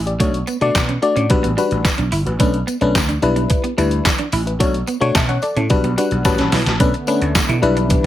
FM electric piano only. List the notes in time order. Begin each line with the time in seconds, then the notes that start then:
0.06 G4 D5
0.20 A3 D4 F#4 C#5
0.61 A3 D4 F#4 D5
1.02 A3 D4 F#4 D5
1.30 G3 D4 F#4 B4
1.57 G3 D4 F#4 B4
2.26 F#4 B4
2.39 A3 C#4 D4 B4
2.81 A3 C#4 D4 B4
3.22 G3 D4 E4 B4
3.77 G3 D4 E4 B4
4.46 E4 B4
4.59 A3 D4 F#4 C#5
5.01 A3 D4 F#4 C#5
5.15 E5 A5
5.29 C#5 F#5
5.42 A4 D5
5.56 E4 A4
5.70 G3 D4 F#4 B4
5.97 G3 D4 F#4 B4 F#5
6.25 G3 C#4 F#4 B4 A5
6.66 F#4 B4
6.80 A3 C#4 D4 B4
7.07 A3 C#4 D4 B4
7.62 G3 D4 E4 B4